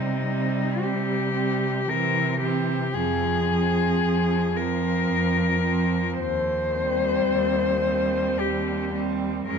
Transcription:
Already playing: C3 G3 C4 D#4
0.27 G3 C4
0.81 C3 G4
1.34 G3 C4
1.87 C3 E3 C4 A#4
2.40 E3 C4 G4
2.93 F2 F3 C4 G#4
3.46 F3 C4
4.01 F2
4.54 F3 C4 A#4
5.09 F2
5.62 F3 C4
6.18 D#2 C5
6.73 G3 C4
7.27 D#2
7.82 G3 C4
8.38 D#2 G4
8.93 G3 C4
9.47 F2 G#3 C#4 A#4

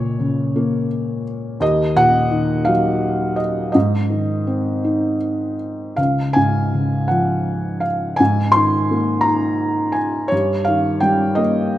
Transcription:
Already playing: C#2 A#2 C#5
0.20 C#3
0.56 A#3
1.60 D#2 D#5
1.96 A#2 F#5
2.31 D#3
2.65 F#3 F5
3.36 D#5
3.72 G#2 D#5
4.10 D#3
4.47 C4
4.84 D#4
5.96 C#2 F5
6.33 G#2 G#5
6.74 C#3
7.08 F3 F#5
7.80 F5
8.16 G#2 G#5
8.52 C6
8.56 D#3
8.91 A#3
9.21 A#5
9.26 D#4
9.92 G#5
10.28 G2 C#5
10.65 D#3 F5
11.00 G3 G5
11.35 A#3 D#5

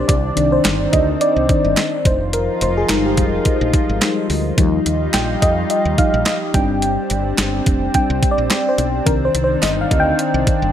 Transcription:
Already playing: G3 C4 D4 G4 A#4 C5 D5
0.08 C2 D#3 C4 D5, kick, closed hi-hat
0.36 C2 D#3 C4 D4, closed hi-hat
0.52 C5
0.65 G1, snare, clap, closed hi-hat
0.93 D2 D#5, kick, closed hi-hat
1.21 D5, closed hi-hat
1.36 C2
1.49 D#3 C4 D4, kick, closed hi-hat
1.64 G1
1.77 snare, clap, closed hi-hat
2.05 F1 F3 D#4 F4 C5, kick, closed hi-hat
2.33 A#4, closed hi-hat
2.61 F1 C5, closed hi-hat
2.77 G#4
2.89 G1 G3 G#3 D#4 A#4, snare, clap, closed hi-hat
3.06 G4
3.17 F1, kick, closed hi-hat
3.45 kick, closed hi-hat
3.61 A#1
3.73 kick, closed hi-hat
3.89 G#1
4.01 G3 G#3 D#4, snare, clap, closed hi-hat
4.30 D2, open hi-hat
4.57 D#2 F3 G3 D#4 F4, kick, closed hi-hat
4.86 D#2, closed hi-hat
5.14 A#1 G5, snare, clap, closed hi-hat
5.42 F2 D#5, kick, closed hi-hat
5.70 D#5, closed hi-hat
5.85 D#2
5.98 F3 G3 D#4 F5, kick, closed hi-hat
6.14 A#1
6.26 D#5, snare, clap, closed hi-hat
6.54 G1 G3 C4 D4 G5, kick, closed hi-hat
6.82 closed hi-hat
7.10 G1, closed hi-hat
7.38 G1, snare, clap, closed hi-hat
7.66 F1, kick, closed hi-hat
7.94 G3 C4 D4 G5, kick, closed hi-hat
8.10 C2
8.23 kick, closed hi-hat
8.31 D5
8.38 A#1
8.50 snare, clap, closed hi-hat
8.69 C5
8.78 B1, closed hi-hat
9.05 C2 D#3 C4 D4 A#4, kick, closed hi-hat
9.25 C5
9.35 C2, closed hi-hat
9.44 C5
9.62 G1 D#5, snare, clap, closed hi-hat, tambourine
9.81 F5
9.91 D2, kick, closed hi-hat
10.00 G5
10.19 closed hi-hat
10.34 C2
10.47 kick, closed hi-hat
10.62 G1

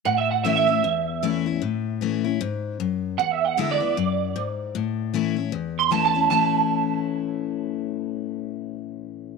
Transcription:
0.05 A2 F#5
0.17 E5
0.31 F#5
0.43 E3 A3 C#4 E4 E5
0.56 E5
0.67 C#4 E4
0.84 E2
1.23 E3 A3 C#4 E4
1.46 C#4 E4
1.62 A2
2.01 E3 A3 C#4 E4
2.24 C#4 E4
2.41 G#2
2.80 F#2
3.18 E2 F#5
3.31 E5
3.45 F#5
3.57 D3 G#3 B3 E4 E5
3.71 D5
3.80 B3 E4
3.97 F#2
4.36 G#2
4.75 A2
5.13 E3 A3 C#4 E4
5.36 C#4 E4
5.52 E2
5.79 C6
5.91 E3 A3 C#4 E4 A5
6.05 A5
6.15 C#4 E4
6.30 A2 E3 A3 C#4 E4 A5

